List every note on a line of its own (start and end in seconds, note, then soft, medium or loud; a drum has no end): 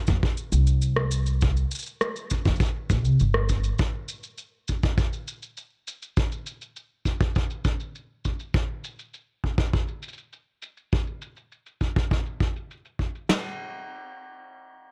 0.07 0.18 F2 medium
0.07 kick loud
0.07 shaker soft
0.23 kick loud
0.37 shaker soft
0.52 1.63 C2 medium
0.52 shaker medium
0.67 shaker soft
0.82 shaker soft
0.96 cross-stick medium
1.11 shaker medium
1.26 shaker soft
1.41 kick loud
1.41 shaker soft
1.57 shaker soft
1.71 shaker medium
1.75 shaker medium
1.79 shaker soft
1.82 shaker soft
1.86 shaker soft
2.01 cross-stick medium
2.01 shaker soft
2.16 shaker soft
2.30 kick medium
2.30 shaker medium
2.45 2.55 F2 medium
2.45 kick medium
2.45 shaker soft
2.56 shaker soft
2.60 kick loud
2.60 shaker soft
2.65 shaker soft
2.90 3.05 A#1 medium
2.90 kick loud
2.90 shaker medium
3.05 3.15 C2 medium
3.05 shaker soft
3.20 3.71 G1 medium
3.20 shaker soft
3.34 cross-stick medium
3.49 kick medium
3.49 shaker medium
3.64 shaker soft
3.78 kick loud
3.78 shaker soft
4.09 shaker medium
4.23 shaker soft
4.38 shaker soft
4.68 kick soft
4.68 shaker medium
4.83 kick medium
4.83 shaker soft
4.98 kick loud
4.98 shaker soft
5.13 shaker soft
5.28 shaker medium
5.43 shaker soft
5.57 shaker soft
5.87 shaker medium
6.02 shaker soft
6.17 kick loud
6.17 shaker soft
6.32 shaker soft
6.46 shaker medium
6.61 shaker soft
6.76 shaker soft
7.05 kick soft
7.05 shaker medium
7.21 kick loud
7.21 shaker soft
7.35 kick medium
7.35 shaker soft
7.50 shaker soft
7.65 kick medium
7.65 shaker medium
7.80 shaker soft
7.95 shaker soft
8.25 kick soft
8.25 shaker medium
8.40 shaker soft
8.54 kick loud
8.54 shaker soft
8.84 shaker medium
8.99 shaker soft
9.14 shaker soft
9.44 kick soft
9.58 kick medium
9.58 shaker soft
9.73 kick medium
9.73 shaker soft
9.88 shaker soft
10.03 shaker medium
10.08 shaker soft
10.13 shaker soft
10.18 shaker soft
10.33 shaker soft
10.62 shaker medium
10.77 shaker soft
10.92 kick medium
10.92 shaker soft
11.07 shaker soft
11.22 shaker medium
11.37 shaker soft
11.52 shaker soft
11.66 shaker soft
11.81 kick soft
11.81 shaker medium
11.96 kick medium
11.96 shaker soft
12.11 kick medium
12.11 shaker soft
12.26 shaker soft
12.40 kick medium
12.40 shaker medium
12.56 shaker soft
12.71 shaker soft
12.85 shaker soft
12.99 kick soft
12.99 shaker medium
13.15 shaker soft
13.29 snare medium
13.29 ride bell medium